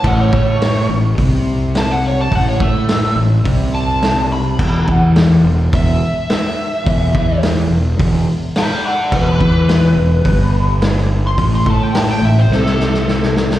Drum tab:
CC |x---------------|----------------|x---------------|----------------|
HH |----o---o---o---|o---o---o---o---|----o---o---o---|o---o---o---o---|
SD |----o-------o---|----o-------o---|----o-------oo--|----o-------oo--|
BD |o-o-----o-------|o-o-----o-------|o-o-----o-------|o-o-----o-------|

CC |x---------------|----------------|
HH |----o---o---o---|o---o-----------|
SD |----o-------oo--|----o---oooooooo|
BD |o-o-----o-------|o-o-------------|